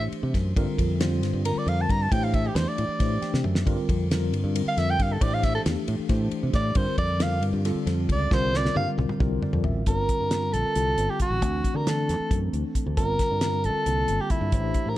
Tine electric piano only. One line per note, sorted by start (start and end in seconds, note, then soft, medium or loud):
0.00 0.51 E3 medium
0.00 0.52 A3 medium
0.00 0.52 D4 medium
0.00 0.52 G4 medium
0.00 0.52 C5 medium
0.56 0.97 D3 loud
0.56 0.97 G3 medium
0.56 0.98 C4 loud
0.56 0.98 F4 medium
0.56 0.98 A#4 loud
1.00 1.41 D3 medium
1.00 1.41 G3 medium
1.00 1.41 C4 medium
1.00 1.41 F4 medium
1.00 1.42 C5 loud
1.45 2.06 D3 medium
1.45 2.06 G3 medium
1.45 2.07 C4 medium
1.45 2.07 F4 medium
1.45 2.07 A#4 medium
2.11 2.52 E3 medium
2.11 2.52 A3 medium
2.11 2.52 D4 medium
2.11 2.53 G4 medium
2.11 2.53 C5 medium
2.55 2.96 E3 medium
2.55 2.96 A3 medium
2.55 2.96 D4 medium
2.55 2.97 G4 medium
2.55 2.97 D5 medium
2.98 3.61 E3 medium
2.98 3.61 A3 medium
2.98 3.61 D4 medium
2.98 3.61 G4 medium
2.98 3.61 C5 medium
3.22 3.43 G5 medium
3.44 3.65 E5 medium
3.65 4.07 D3 loud
3.65 4.07 G3 medium
3.65 4.07 C4 loud
3.65 4.07 F4 medium
3.65 4.08 A#4 loud
4.11 4.52 D3 medium
4.11 4.52 G3 medium
4.11 4.52 C4 medium
4.11 4.52 F4 medium
4.11 4.52 A#4 medium
4.54 5.16 D3 medium
4.54 5.16 G3 medium
4.54 5.16 C4 medium
4.54 5.16 F4 medium
4.54 5.16 A#4 medium
5.21 5.62 E3 medium
5.21 5.62 A3 medium
5.21 5.63 D4 medium
5.21 5.62 G4 medium
5.21 5.63 C5 medium
5.65 6.06 E3 medium
5.65 6.06 A3 medium
5.65 6.07 D4 medium
5.65 6.07 G4 medium
5.65 6.07 A4 medium
6.08 6.71 E3 medium
6.08 6.71 A3 medium
6.08 6.71 D4 medium
6.08 6.71 G4 medium
6.08 6.71 C5 medium
6.75 7.17 D3 medium
6.75 7.17 G3 medium
6.75 7.17 C4 medium
6.75 7.17 F4 medium
6.75 7.18 A#4 loud
7.20 7.61 D3 medium
7.20 7.61 G3 medium
7.20 7.61 C4 medium
7.20 7.62 F4 medium
7.20 7.62 A#4 medium
7.64 8.26 D3 medium
7.64 8.26 G3 medium
7.64 8.26 C4 medium
7.64 8.27 F4 medium
7.64 8.27 A4 loud
8.30 8.72 D3 medium
8.30 8.72 G3 medium
8.30 8.72 C4 medium
8.30 8.73 F4 medium
8.30 8.73 A#4 loud
8.75 9.16 D3 medium
8.75 9.16 G3 medium
8.75 9.17 C4 medium
8.75 9.17 F4 medium
8.75 9.17 A#4 medium
9.19 9.81 D3 medium
9.19 9.81 G3 medium
9.19 9.81 C4 medium
9.19 9.82 F4 medium
9.19 9.82 A#4 loud
9.42 9.63 D5 medium
9.64 9.85 E5 medium
9.87 10.28 D3 medium
9.87 10.28 G3 medium
9.87 10.28 C4 medium
9.87 10.28 F4 medium
9.87 10.28 A#4 medium
10.31 10.72 D3 medium
10.31 10.73 G3 medium
10.31 10.73 C4 medium
10.31 10.73 F4 medium
10.31 10.73 A#4 medium
10.75 11.37 D3 medium
10.75 11.37 G3 medium
10.75 11.37 C4 medium
10.75 11.37 F4 medium
10.75 11.37 A4 medium
11.42 11.83 E3 medium
11.42 11.83 A3 medium
11.42 11.83 C4 medium
11.42 11.83 D4 medium
11.42 11.84 F#4 medium
11.85 12.27 E3 medium
11.85 12.27 A3 medium
11.85 12.27 C4 medium
11.85 12.28 D4 medium
11.85 12.28 A4 medium
12.29 12.92 E3 medium
12.29 12.92 A3 medium
12.29 12.92 C4 medium
12.29 12.92 D4 medium
12.29 12.92 A4 medium
12.96 13.38 D3 medium
12.96 13.38 G3 medium
12.96 13.38 C4 medium
12.96 13.38 F4 medium
12.96 13.38 A#4 medium
13.42 13.83 D3 medium
13.42 13.83 G3 medium
13.42 13.83 C4 medium
13.42 13.83 F4 medium
13.42 13.83 A#4 medium
13.86 14.48 D3 medium
13.86 14.48 G3 medium
13.86 14.48 A#3 medium
13.86 14.48 C4 medium
13.86 14.48 F4 medium
14.53 14.94 E3 medium
14.53 14.94 A3 medium
14.53 14.94 D4 medium
14.53 14.94 G4 medium
14.53 14.94 C5 medium